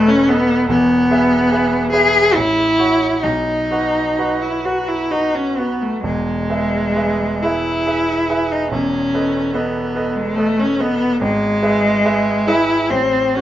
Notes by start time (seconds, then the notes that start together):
Already playing: E1 E2 A4 B4 D#5
0.08 C#4
0.29 B3 A4 B4 D#5
0.68 E1 E2 B3
1.11 G#4 B4 E5
1.52 G#4 B4 E5
1.92 G#4 B4 E5
2.35 A1 E4
2.79 F#4 C#5 F#5
3.23 B1 D#4
3.71 F#4 B4 F#5
4.19 F#4 B4 F#5
4.42 E4
4.65 F#4 B4 F#5
4.88 E4
5.11 D#4 F#4 B4 F#5
5.35 C#4
5.58 B3 F#4 B4 F#5
5.82 A3
6.03 E1 E2 G#3
6.49 G#4 B4 E5
6.96 G#4 B4 E5
7.42 E4 G#4 B4 E5
7.86 G#4 B4 E5
8.29 G#4 B4 E5
8.51 D#4
8.71 E1 E2 C#4
9.14 A4 B4 D#5
9.54 B3 A4 B4 D#5
9.96 A4 B4 D#5
10.16 G#3
10.36 A3 A4 B4 D#5
10.59 C#4
10.80 B3 A4 B4 D#5
11.21 G#1 G#3
11.62 G#4 B4 E5
12.05 G#4 B4 E5
12.47 E4 G#4 B4 E5
12.90 A1 C4
13.35 C#4 F#4 C5 F#5